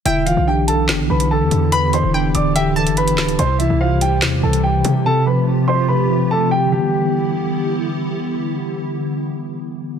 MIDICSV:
0, 0, Header, 1, 7, 480
1, 0, Start_track
1, 0, Tempo, 416667
1, 65, Time_signature, 4, 2, 24, 8
1, 11513, End_track
2, 0, Start_track
2, 0, Title_t, "Synth pluck"
2, 0, Program_c, 0, 84
2, 70, Note_on_c, 0, 79, 118
2, 1461, Note_off_c, 0, 79, 0
2, 1984, Note_on_c, 0, 83, 106
2, 2435, Note_off_c, 0, 83, 0
2, 2468, Note_on_c, 0, 79, 81
2, 2918, Note_off_c, 0, 79, 0
2, 2944, Note_on_c, 0, 76, 85
2, 3172, Note_off_c, 0, 76, 0
2, 3181, Note_on_c, 0, 81, 92
2, 3411, Note_off_c, 0, 81, 0
2, 11513, End_track
3, 0, Start_track
3, 0, Title_t, "Grand piano"
3, 0, Program_c, 1, 0
3, 62, Note_on_c, 1, 76, 86
3, 72, Note_on_c, 1, 64, 57
3, 248, Note_off_c, 1, 76, 0
3, 254, Note_off_c, 1, 64, 0
3, 301, Note_on_c, 1, 77, 89
3, 310, Note_on_c, 1, 65, 64
3, 487, Note_off_c, 1, 77, 0
3, 493, Note_off_c, 1, 65, 0
3, 547, Note_on_c, 1, 79, 80
3, 557, Note_on_c, 1, 67, 64
3, 731, Note_off_c, 1, 79, 0
3, 737, Note_off_c, 1, 67, 0
3, 780, Note_on_c, 1, 81, 85
3, 789, Note_on_c, 1, 69, 62
3, 966, Note_off_c, 1, 81, 0
3, 972, Note_off_c, 1, 69, 0
3, 1267, Note_on_c, 1, 83, 71
3, 1276, Note_on_c, 1, 71, 54
3, 1451, Note_off_c, 1, 83, 0
3, 1457, Note_off_c, 1, 71, 0
3, 1510, Note_on_c, 1, 81, 81
3, 1519, Note_on_c, 1, 69, 63
3, 1958, Note_off_c, 1, 81, 0
3, 1963, Note_off_c, 1, 69, 0
3, 1988, Note_on_c, 1, 83, 109
3, 1997, Note_on_c, 1, 71, 83
3, 2171, Note_off_c, 1, 83, 0
3, 2177, Note_off_c, 1, 71, 0
3, 2229, Note_on_c, 1, 84, 93
3, 2237, Note_on_c, 1, 72, 66
3, 2412, Note_off_c, 1, 84, 0
3, 2417, Note_off_c, 1, 72, 0
3, 2706, Note_on_c, 1, 86, 81
3, 2715, Note_on_c, 1, 74, 61
3, 2890, Note_off_c, 1, 86, 0
3, 2896, Note_off_c, 1, 74, 0
3, 2943, Note_on_c, 1, 79, 85
3, 2952, Note_on_c, 1, 67, 60
3, 3129, Note_off_c, 1, 79, 0
3, 3134, Note_off_c, 1, 67, 0
3, 3185, Note_on_c, 1, 81, 81
3, 3195, Note_on_c, 1, 69, 62
3, 3370, Note_off_c, 1, 81, 0
3, 3376, Note_off_c, 1, 69, 0
3, 3425, Note_on_c, 1, 83, 85
3, 3433, Note_on_c, 1, 71, 70
3, 3876, Note_off_c, 1, 83, 0
3, 3880, Note_off_c, 1, 71, 0
3, 3904, Note_on_c, 1, 84, 95
3, 3913, Note_on_c, 1, 72, 74
3, 4089, Note_off_c, 1, 84, 0
3, 4095, Note_off_c, 1, 72, 0
3, 4133, Note_on_c, 1, 76, 88
3, 4142, Note_on_c, 1, 64, 63
3, 4322, Note_off_c, 1, 76, 0
3, 4328, Note_off_c, 1, 64, 0
3, 4386, Note_on_c, 1, 77, 90
3, 4395, Note_on_c, 1, 65, 67
3, 4570, Note_off_c, 1, 77, 0
3, 4576, Note_off_c, 1, 65, 0
3, 4624, Note_on_c, 1, 79, 86
3, 4634, Note_on_c, 1, 67, 61
3, 4809, Note_off_c, 1, 79, 0
3, 4815, Note_off_c, 1, 67, 0
3, 5109, Note_on_c, 1, 81, 76
3, 5118, Note_on_c, 1, 69, 61
3, 5292, Note_off_c, 1, 81, 0
3, 5297, Note_off_c, 1, 69, 0
3, 5338, Note_on_c, 1, 79, 81
3, 5348, Note_on_c, 1, 67, 59
3, 5792, Note_off_c, 1, 79, 0
3, 5797, Note_off_c, 1, 67, 0
3, 5829, Note_on_c, 1, 81, 107
3, 5839, Note_on_c, 1, 69, 80
3, 6012, Note_off_c, 1, 81, 0
3, 6018, Note_off_c, 1, 69, 0
3, 6065, Note_on_c, 1, 83, 66
3, 6075, Note_on_c, 1, 71, 62
3, 6249, Note_off_c, 1, 83, 0
3, 6256, Note_off_c, 1, 71, 0
3, 6539, Note_on_c, 1, 84, 86
3, 6548, Note_on_c, 1, 72, 63
3, 6726, Note_off_c, 1, 84, 0
3, 6732, Note_off_c, 1, 72, 0
3, 6779, Note_on_c, 1, 83, 79
3, 6789, Note_on_c, 1, 71, 60
3, 7233, Note_off_c, 1, 83, 0
3, 7238, Note_off_c, 1, 71, 0
3, 7269, Note_on_c, 1, 81, 83
3, 7278, Note_on_c, 1, 69, 68
3, 7452, Note_off_c, 1, 81, 0
3, 7458, Note_off_c, 1, 69, 0
3, 7503, Note_on_c, 1, 79, 87
3, 7512, Note_on_c, 1, 67, 63
3, 7688, Note_off_c, 1, 79, 0
3, 7694, Note_off_c, 1, 67, 0
3, 7743, Note_on_c, 1, 67, 89
3, 9138, Note_off_c, 1, 67, 0
3, 11513, End_track
4, 0, Start_track
4, 0, Title_t, "Analog synth pad"
4, 0, Program_c, 2, 89
4, 65, Note_on_c, 2, 50, 88
4, 65, Note_on_c, 2, 64, 80
4, 65, Note_on_c, 2, 67, 98
4, 66, Note_on_c, 2, 59, 79
4, 3866, Note_off_c, 2, 50, 0
4, 3867, Note_off_c, 2, 59, 0
4, 3903, Note_on_c, 2, 48, 87
4, 3903, Note_on_c, 2, 55, 78
4, 5778, Note_off_c, 2, 67, 0
4, 5779, Note_off_c, 2, 64, 0
4, 5804, Note_off_c, 2, 55, 0
4, 5822, Note_on_c, 2, 57, 79
4, 5822, Note_on_c, 2, 67, 94
4, 5823, Note_on_c, 2, 65, 79
4, 7705, Note_off_c, 2, 48, 0
4, 7724, Note_off_c, 2, 57, 0
4, 7724, Note_off_c, 2, 65, 0
4, 7724, Note_off_c, 2, 67, 0
4, 7743, Note_on_c, 2, 50, 85
4, 7743, Note_on_c, 2, 59, 82
4, 7743, Note_on_c, 2, 64, 80
4, 7743, Note_on_c, 2, 67, 94
4, 11513, Note_off_c, 2, 50, 0
4, 11513, Note_off_c, 2, 59, 0
4, 11513, Note_off_c, 2, 64, 0
4, 11513, Note_off_c, 2, 67, 0
4, 11513, End_track
5, 0, Start_track
5, 0, Title_t, "Tine electric piano"
5, 0, Program_c, 3, 4
5, 63, Note_on_c, 3, 50, 88
5, 287, Control_c, 3, 64, 127
5, 306, Note_on_c, 3, 52, 82
5, 544, Note_on_c, 3, 62, 101
5, 1010, Note_off_c, 3, 50, 0
5, 1024, Note_on_c, 3, 50, 93
5, 1251, Note_off_c, 3, 52, 0
5, 1265, Note_on_c, 3, 52, 85
5, 1731, Note_off_c, 3, 50, 0
5, 1744, Note_off_c, 3, 62, 0
5, 1745, Note_on_c, 3, 50, 82
5, 1972, Note_off_c, 3, 50, 0
5, 1985, Note_on_c, 3, 50, 92
5, 2211, Note_off_c, 3, 52, 0
5, 2225, Note_on_c, 3, 52, 83
5, 2464, Note_on_c, 3, 62, 93
5, 2930, Note_off_c, 3, 50, 0
5, 2944, Note_on_c, 3, 50, 92
5, 3171, Note_off_c, 3, 52, 0
5, 3185, Note_on_c, 3, 52, 79
5, 3651, Note_off_c, 3, 50, 0
5, 3664, Note_off_c, 3, 62, 0
5, 3665, Note_on_c, 3, 50, 82
5, 3903, Note_on_c, 3, 48, 94
5, 3904, Note_off_c, 3, 50, 0
5, 3905, Note_off_c, 3, 52, 0
5, 3920, Control_c, 3, 64, 0
5, 4111, Control_c, 3, 64, 127
5, 4145, Note_on_c, 3, 52, 82
5, 4384, Note_on_c, 3, 72, 93
5, 4849, Note_off_c, 3, 48, 0
5, 4863, Note_on_c, 3, 48, 93
5, 5089, Note_off_c, 3, 52, 0
5, 5103, Note_on_c, 3, 52, 83
5, 5568, Note_off_c, 3, 48, 0
5, 5581, Note_on_c, 3, 48, 77
5, 5584, Note_off_c, 3, 72, 0
5, 5809, Note_off_c, 3, 48, 0
5, 5823, Note_on_c, 3, 48, 95
5, 5824, Note_off_c, 3, 52, 0
5, 5837, Control_c, 3, 64, 0
5, 6018, Control_c, 3, 64, 127
5, 6062, Note_on_c, 3, 53, 82
5, 6302, Note_on_c, 3, 60, 95
5, 6769, Note_off_c, 3, 48, 0
5, 6783, Note_on_c, 3, 48, 84
5, 7009, Note_off_c, 3, 53, 0
5, 7022, Note_on_c, 3, 53, 85
5, 7489, Note_off_c, 3, 48, 0
5, 7503, Note_off_c, 3, 60, 0
5, 7503, Note_on_c, 3, 48, 81
5, 7673, Note_on_c, 3, 50, 85
5, 7720, Note_on_c, 3, 52, 77
5, 7743, Note_off_c, 3, 53, 0
5, 7744, Note_off_c, 3, 48, 0
5, 7760, Control_c, 3, 64, 0
5, 7765, Note_on_c, 3, 55, 77
5, 7811, Note_on_c, 3, 59, 94
5, 7965, Control_c, 3, 64, 127
5, 11513, Note_off_c, 3, 50, 0
5, 11513, Note_off_c, 3, 52, 0
5, 11513, Note_off_c, 3, 55, 0
5, 11513, Note_off_c, 3, 59, 0
5, 11513, End_track
6, 0, Start_track
6, 0, Title_t, "808-style bass"
6, 0, Program_c, 4, 38
6, 64, Note_on_c, 4, 28, 112
6, 410, Note_off_c, 4, 28, 0
6, 426, Note_on_c, 4, 35, 112
6, 1024, Note_on_c, 4, 31, 103
6, 1041, Note_off_c, 4, 35, 0
6, 1145, Note_on_c, 4, 35, 102
6, 1162, Note_off_c, 4, 31, 0
6, 1259, Note_off_c, 4, 35, 0
6, 1265, Note_on_c, 4, 35, 109
6, 1625, Note_on_c, 4, 40, 100
6, 1643, Note_off_c, 4, 35, 0
6, 1739, Note_off_c, 4, 40, 0
6, 1744, Note_on_c, 4, 40, 106
6, 2320, Note_off_c, 4, 40, 0
6, 2343, Note_on_c, 4, 28, 106
6, 2689, Note_off_c, 4, 28, 0
6, 2704, Note_on_c, 4, 26, 102
6, 3303, Note_on_c, 4, 31, 98
6, 3320, Note_off_c, 4, 26, 0
6, 3603, Note_on_c, 4, 26, 104
6, 3620, Note_off_c, 4, 31, 0
6, 3889, Note_off_c, 4, 26, 0
6, 3903, Note_on_c, 4, 36, 107
6, 4249, Note_off_c, 4, 36, 0
6, 4264, Note_on_c, 4, 36, 110
6, 4864, Note_on_c, 4, 40, 102
6, 4882, Note_off_c, 4, 36, 0
6, 5092, Note_off_c, 4, 40, 0
6, 5105, Note_on_c, 4, 36, 105
6, 5565, Note_off_c, 4, 36, 0
6, 5584, Note_on_c, 4, 48, 105
6, 5815, Note_off_c, 4, 48, 0
6, 11513, End_track
7, 0, Start_track
7, 0, Title_t, "Drums"
7, 64, Note_on_c, 9, 42, 83
7, 179, Note_off_c, 9, 42, 0
7, 306, Note_on_c, 9, 42, 72
7, 421, Note_off_c, 9, 42, 0
7, 783, Note_on_c, 9, 42, 87
7, 899, Note_off_c, 9, 42, 0
7, 1023, Note_on_c, 9, 39, 92
7, 1024, Note_on_c, 9, 38, 115
7, 1026, Note_on_c, 9, 42, 99
7, 1138, Note_off_c, 9, 39, 0
7, 1139, Note_off_c, 9, 38, 0
7, 1141, Note_off_c, 9, 42, 0
7, 1382, Note_on_c, 9, 42, 91
7, 1497, Note_off_c, 9, 42, 0
7, 1743, Note_on_c, 9, 42, 78
7, 1858, Note_off_c, 9, 42, 0
7, 1984, Note_on_c, 9, 42, 83
7, 2099, Note_off_c, 9, 42, 0
7, 2225, Note_on_c, 9, 42, 74
7, 2340, Note_off_c, 9, 42, 0
7, 2703, Note_on_c, 9, 42, 88
7, 2818, Note_off_c, 9, 42, 0
7, 2945, Note_on_c, 9, 42, 101
7, 3061, Note_off_c, 9, 42, 0
7, 3302, Note_on_c, 9, 42, 90
7, 3417, Note_off_c, 9, 42, 0
7, 3422, Note_on_c, 9, 42, 76
7, 3537, Note_off_c, 9, 42, 0
7, 3543, Note_on_c, 9, 42, 83
7, 3658, Note_off_c, 9, 42, 0
7, 3663, Note_on_c, 9, 39, 85
7, 3665, Note_on_c, 9, 38, 104
7, 3779, Note_off_c, 9, 39, 0
7, 3780, Note_off_c, 9, 38, 0
7, 3784, Note_on_c, 9, 42, 80
7, 3900, Note_off_c, 9, 42, 0
7, 3904, Note_on_c, 9, 42, 82
7, 4019, Note_off_c, 9, 42, 0
7, 4144, Note_on_c, 9, 42, 72
7, 4260, Note_off_c, 9, 42, 0
7, 4623, Note_on_c, 9, 42, 87
7, 4738, Note_off_c, 9, 42, 0
7, 4862, Note_on_c, 9, 39, 87
7, 4864, Note_on_c, 9, 38, 111
7, 4865, Note_on_c, 9, 42, 102
7, 4978, Note_off_c, 9, 39, 0
7, 4979, Note_off_c, 9, 38, 0
7, 4981, Note_off_c, 9, 42, 0
7, 5221, Note_on_c, 9, 42, 92
7, 5336, Note_off_c, 9, 42, 0
7, 5582, Note_on_c, 9, 42, 82
7, 5697, Note_off_c, 9, 42, 0
7, 11513, End_track
0, 0, End_of_file